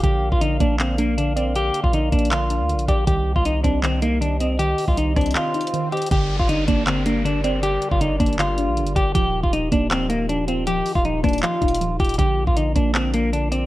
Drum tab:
HH |x-----------------------x-----------x-----------x-----------x-----------x-----------x-----------|x-----------x-----------x-----------x---x---x---x-----------x-----------x-----x-----x-----------|x-----------------------x-----------x-----------x-----------x-----------x-----------x-----------|x-----------o-----------x-----------x--x--x--x--x-----------x---x---x---x-----------x--x--x--x--|
CP |------------------------------------------------x-----------------------------------------------|------------------------------------------------x-----------------------------------------------|------------------------------------------------x-----------------------------------------------|------------------------------------------------x-----------------------------------------------|
SD |------------------------------------------------------------------------------------------------|------------------------------------------------------------------------------------------------|------------------------------------------------------------------------------------------------|------------------------------------r-----------------------------------------------------------|
BD |o-----------------o-----------------o-----------------------------------------------------------|------------------o-----------------o-----------------------------------------------o-----------|o-----------------o-----------------o-----------------------------------------------------------|------------------o-----------------o-----------------------------------------------------------|

HH |x-----------------------x-----------x-----------x-----------x-----------x-----------x-----------|x-----------x-----------x-----------x---x---x---x-----------x-----------x-----x-----x-----------|x-----------------------x-----------x-----------x-----------x-----------x-----------x-----------|x-----------o-----------x-----------x--x--x--x--x-----------x---x---x---x-----------x--x--x--x--|
CP |------------------------------------------------x-----------------------------------------------|------------------------------------------------x-----------------------------------------------|------------------------------------------------x-----------------------------------------------|------------------------------------------------x-----------------------------------------------|
SD |------------------------------------------------------------------------------------------------|------------------------------------------------------------------------------------------------|------------------------------------------------------------------------------------------------|------------------------------------r-----------------------------------------------------------|
BD |o-----------------o-----------------o-----------------------------------------------------------|------------------o-----------------o-----------------------------------------------o-----------|o-----------------o-----------------o-----------------------------------------------------------|------------------o-----------------o-----------------------o-----------------------o-----------|

HH |x-----------------------x-----------x-----------x-----------x-----------x-----------x-----------|
CP |------------------------------------------------x-----------------------------------------------|
SD |------------------------------------------------------------------------------------------------|
BD |o-----------------o-----------------o-----------------------------------------------------------|